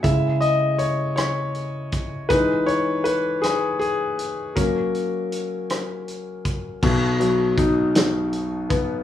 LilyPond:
<<
  \new Staff \with { instrumentName = "Grand piano" } { \time 6/8 \key b \major \tempo 4. = 53 e''8 dis''8 cis''8 cis''4 r8 | b'8 cis''8 b'8 gis'8 gis'4 | ais'2 r4 | r2. | }
  \new Staff \with { instrumentName = "Grand piano" } { \clef bass \time 6/8 \key b \major <cis gis e'>8 r2 r8 | <e gis dis'>8 r2 r8 | <fis ais cis'>2. | <b,, b,>8 fis8 dis'4. b8 | }
  \new DrumStaff \with { instrumentName = "Drums" } \drummode { \time 6/8 <hh bd>8 hh8 hh8 <hh ss>8 hh8 <hh bd>8 | <hh bd>8 hh8 hh8 <hh ss>8 hh8 hh8 | <hh bd>8 hh8 hh8 <hh ss>8 hh8 <hh bd>8 | <cymc bd>8 hh8 <hh bd>8 <hh sn>8 hh8 <hh bd>8 | }
>>